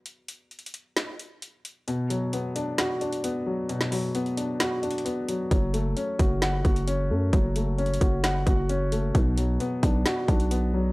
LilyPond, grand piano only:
\new Staff \with { instrumentName = "Grand piano" } { \time 4/4 \key b \dorian \tempo 4 = 132 r1 | b,8 fis8 b8 d'8 fis'8 d'8 b8 fis8 | b,8 fis8 b8 d'8 fis'8 d'8 b8 fis8 | fis8 a8 cis'8 fis'8 fis''8 fis'8 cis'8 a8 |
fis8 a8 cis'8 fis'8 fis''8 fis'8 cis'8 a8 | b,8 fis8 b8 d'8 fis'8 d'8 b8 fis8 | }